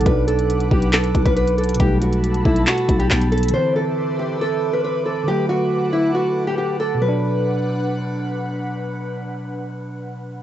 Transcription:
<<
  \new Staff \with { instrumentName = "Analog synth pad" } { \time 4/4 \key b \phrygian \tempo 4 = 138 << { d'''1 | b''1 | <b' d'''>1~ | <b' d'''>1 |
<d' b' fis''>1~ | <d' b' fis''>1 | } \\ { <b' fis''>1 | <a' a''>1 | <c'' e''>1 | <a' fis''>1 |
r1 | r1 | } >> }
  \new Staff \with { instrumentName = "Nylon-string guitar" } { \time 4/4 \key b \phrygian b'8 a'4 g'8 a'8. b'16 b'8 a'8 | g'8 fis'4 e'8 fis'8. g'16 g'8 a'8 | c''8 a'4 g'8 a'8. b'16 b'8 a'8 | g'8 fis'4 e'8 fis'8. g'16 g'8 a'8 |
b'2. r4 | r1 | }
  \new Staff \with { instrumentName = "Tine electric piano" } { \clef bass \time 4/4 \key b \phrygian <b, fis d'>1 | <b, g a>2. <b, g b>4 | <d e c'>1 | <d fis a>1 |
<b, fis d'>1~ | <b, fis d'>1 | }
  \new Staff \with { instrumentName = "808-style bass" } { \clef bass \time 4/4 \key b \phrygian b,,4. b,,4 b,,16 b,,4~ b,,16 | b,,4. b,,8 r8 b,,8 b,,4 | r1 | r1 |
r1 | r1 | }
  \new DrumStaff \with { instrumentName = "Drums" } \drummode { \time 4/4 <hh bd>8 hh16 hh16 hh16 hh16 bd16 hh16 <hc hh>16 hh16 <hh bd>16 <hh bd>16 hh16 hh16 hh32 hh32 hh32 hh32 | <hh bd>8 hh16 hh16 hh16 hh16 bd16 hh16 <hc hh>16 hh16 <hh bd>16 hh16 <hc hh>16 hh16 hh32 hh32 hh32 hh32 | r4 r4 r4 r4 | r4 r4 r4 r4 |
r4 r4 r4 r4 | r4 r4 r4 r4 | }
>>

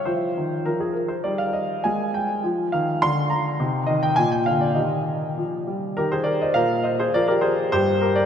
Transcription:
<<
  \new Staff \with { instrumentName = "Grand piano" } { \time 2/4 \key f \mixolydian \tempo 4 = 102 << { c''4 bes'16 aes'16 bes'16 c''16 | \key ees \major d''16 f''16 ees''8 aes''8 g''8 | r8 f''8 c'''8 bes''8 | r8 ees''16 g''16 aes''16 g''16 f''16 d''16 |
ees''4 r4 | <g' bes'>16 <aes' c''>16 <bes' d''>16 <c'' ees''>16 <bes' f''>8 <c'' ees''>16 <aes' c''>16 | <bes' d''>16 <g' bes'>16 <aes' c''>8 <g' c''>8 <g' bes'>16 <bes' d''>16 | } \\ { f'2 | ees'4 r4 | f'4 r4 | ees'4 r4 |
g'2 | r2 | r2 | } >> }
  \new Staff \with { instrumentName = "Grand piano" } { \clef bass \time 2/4 \key f \mixolydian f8 ees8 f4 | \key ees \major g4 aes4 | f8 ees8 d4 | c8 ees8 bes,8 d8 |
ees4 f8 g8 | ees4 bes,4 | f4 g,4 | }
>>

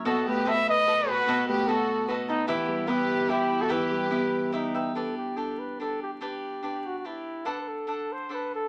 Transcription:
<<
  \new Staff \with { instrumentName = "Cavaquinho" } { \time 3/4 \key e \minor \tempo 4 = 144 <fis' a' b' dis''>4 <fis' a' b' dis''>8 <a' b' dis''>8 <fis' a' b' dis''>4 | <fis' a' b' dis''>4 <fis' a' b' dis''>4 <fis' a' b' dis''>8 <a' b' dis''>8 | <e' g' b' e''>4 <e' g' b' e''>4 <e' g' b' e''>4 | <e' g' b' e''>4 <e' g' b' e''>4 <e' g' b' e''>8 <g' b' e''>8 |
\key g \major <d' g' b' d''>4 <d' g' b' d''>4 <d' g' b' d''>4 | <d' g' b' d''>4 <d' g' b' d''>4 <d' g' b' d''>4 | <d' a' d'' fis''>4 <d' a' d'' fis''>4 <d' a' d'' fis''>4 | }
  \new Staff \with { instrumentName = "Trumpet" } { \time 3/4 \key e \minor a'8 b'8 e''8 dis''4 b'8~ | b'8 b'8 a'4 r8 dis'8 | e'4 b'4 g'8. a'16 | b'2 dis'4 |
\key g \major a'8 g'8 a'8 b'8 a'8 g'8 | g'4~ \tuplet 3/2 { g'8. fis'8 fis'16 } e'4 | \tuplet 3/2 { b'8 b'16 a'8.~ } a'8 c''8 b'8 a'8 | }
  \new Staff \with { instrumentName = "Violin section" } { \time 3/4 \key e \minor fis'8 g'8 b'8 b'4 fis'8~ | fis'8 g'8 fis'4 r8 b8 | b4 g'4 e'8. fis'16 | g'2 r4 |
\key g \major r2. | r2. | r2. | }
  \new Staff \with { instrumentName = "Harp" } { \time 3/4 \key e \minor b,8 a8 b8 r8 b'8 a''8 | b,8 a8 b8 r8 b'8 a''8 | e8 g8 b8 r8 e''8 g''8 | e8 g8 b8 r8 e''8 g''8 |
\key g \major r2. | r2. | r2. | }
>>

